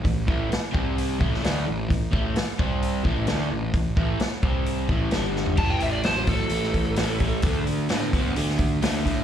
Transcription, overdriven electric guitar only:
\new Staff \with { instrumentName = "Overdriven electric guitar" } { \clef bass \time 4/4 \key a \minor \tempo 4 = 130 <a, e>8 <a, e a>8 r8 <c g c'>4 <a, e a>8 <d a d'>8 <a, e>8 | <a, e>8 <a, e a>8 r8 <c g c'>4 <a, e a>8 <d a d'>8 <a, e>8 | <a, e>8 <a, e a>8 r8 <c g c'>4 <a, e a>8 <g, d g>4 | <a, e>4 <a, fis>8 <a, fis>8 <a, e>4 <a, e>8 <a, e>8 |
<d a>4 <d b>8 <d b>8 <d a>4 <d a>8 <d a>8 | }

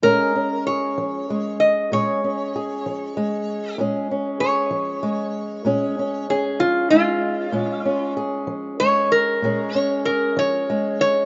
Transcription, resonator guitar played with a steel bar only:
\new Staff \with { instrumentName = "Resonator guitar played with a steel bar" } { \time 12/8 \key bes \minor \tempo 4. = 64 bes'4 des''4. ees''8 des''2. | r4 des''2. aes'8 f'8 f'4~ | f'4 r4 des''8 bes'4 des''8 bes'8 des''4 des''8 | }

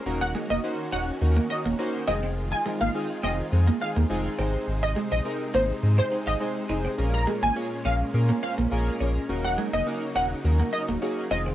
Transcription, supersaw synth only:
\new Staff \with { instrumentName = "Supersaw synth" } { \clef bass \time 4/4 \key ees \dorian \tempo 4 = 104 << { <ees ges'>2.~ <ees ges'>8 <ees f'>8~ | <ees f'>2.~ <ees f'>8 <c ees'>8~ | <c ees'>1 | <bes, des'>1 |
<des ees'>2.~ <des ees'>8 <ees f'>8 | } \\ { des'2.~ des'8 aes8~ | aes1~ | aes1~ | aes1 |
ges2.~ ges8 aes8 | } >> }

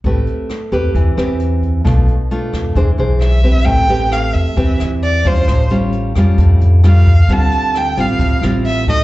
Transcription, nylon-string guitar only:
\new Staff \with { instrumentName = "Nylon-string guitar" } { \time 4/4 \key a \minor \tempo 4 = 133 << { <c' g' b'>4 r8 <c' g' b'>4 <c' g' b'>4. | <a d' f'>8 r8 <a d' f'>4 <d' gis' c''>8 <d' gis' c''>4 <c' g' b'>8~ | <c' g' b'>8 <c' g' b'>4. <c' g' b'>4. <g cis' f'>8~ | <g cis' f'>8 <g cis' eis'>4 <g cis' eis'>4. <g cis' eis'>8 r8 |
<g c' f'>4. <g c' f'>4 <g c' f'>4 <a dis' fis'>8 | } \\ { a2 e2 | b,2 e2 | a2 e2 | a,2 a,2 |
d2 a,2 | } >> }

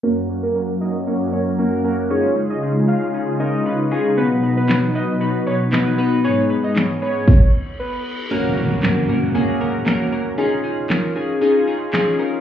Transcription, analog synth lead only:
\new Staff \with { instrumentName = "Analog synth lead" } { \time 4/4 \key fis \major \tempo 4 = 116 ais'16 r8 ais'8 r16 dis''16 r8. cis''16 r4 r16 | cis''8 r16 dis''16 r8 eis''8 r8 dis''8. r8. | b'16 r8 b'8 r16 dis''16 r8. cis''16 r4 r16 | cis''8 r16 dis''16 r8 cis''4 r8 b'8. r16 |
r1 | r1 | }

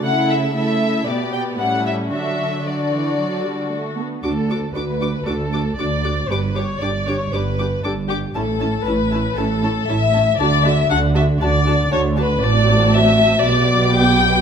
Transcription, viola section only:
\new Staff \with { instrumentName = "Viola section" } { \time 4/4 \key d \major \tempo 4 = 117 <a e'>4 <a e'>4 b4 <g cis'>4 | <fis d'>4 fis8 e8 fis8 g8 a8 b8 | <d' fis'>8 <d' fis'>8 <d' fis'>8 <d' fis'>8 <d' fis'>8 <d' fis'>8 <d' fis'>8 <d' fis'>8 | <d' g'>8 <d' g'>8 <d' g'>8 <d' g'>8 <d' g'>8 <d' g'>8 <d' g'>8 <d' g'>8 |
<cis' e'>8 <cis' e'>8 <cis' e'>8 <cis' e'>8 <cis' e'>8 <cis' e'>8 <cis' e'>8 <cis' e'>8 | <d' fis'>8 <d' fis'>8 <d' fis'>8 <d' fis'>8 <d' fis'>8 <d' fis'>8 <d' fis'>8 <d' fis'>8 | \key g \major <c' fis'>2 <b g'>2 | }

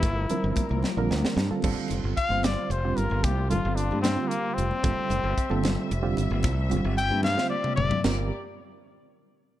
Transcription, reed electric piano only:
\new Staff \with { instrumentName = "Reed electric piano" } { \time 6/8 \key g \dorian \tempo 4. = 75 r8 <d f g c' bes'>4 r16 <d g c' f' bes'>8. r16 <d g c' f' a'>16 | <d g c' f' a'>4 r16 <d g c' f' c''>8. r16 <d g c' f' g'>8.~ | <d g c' f' g'>16 r16 <d g c' f' a'>4 r16 <d g c' f' g'>4 r16 | <d g c' f' a'>4 r16 <d g c' f' a'>8. r16 <d g c' f' g'>8.~ |
<d g c' f' g'>16 r16 <d g c' f' g'>4 r16 <d g c' f' c''>4 r16 | <d g c' f' bes'>8 r2 r8 | }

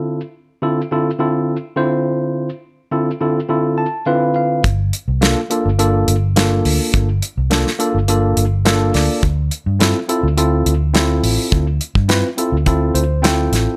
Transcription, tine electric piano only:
\new Staff \with { instrumentName = "Tine electric piano" } { \time 4/4 \key d \minor \tempo 4 = 105 << { r1 | r2 r8 a''8 f''8 f''8 | r1 | r2. f''8 d''8 |
r1 | r2 r8 c''8 g''4 | } \\ { <d c' e' f' a'>16 r8. <d c' e' f' a'>8 <d c' e' f' a'>8 <d c' e' f' a'>8 r8 <d c' e' f' c''>4~ | <d c' e' f' c''>16 r8. <d c' e' f' a'>8 <d c' e' f' a'>8 <d c' e' f' a'>8 r8 <d c' e' f' b'>4 | r4 <bes d' f' a'>8 <bes d' f' a'>8 <bes d' f' a'>8 r8 <bes d' f' a'>4~ | <bes d' f' a'>16 r8. <bes d' f' a'>8 <bes d' f' a'>8 <bes d' f' a'>8 r8 <bes d' f' a'>4 |
r4 <c' e' f' a'>8 <c' e' f' a'>8 <c' e' f' a'>8 r8 <c' e' f' a'>4~ | <c' e' f' a'>16 r8. <c' e' f' b'>8 <c' e' f' a'>8 <c' e' f' a'>8 r8 <c' e' f' a'>4 | } >> }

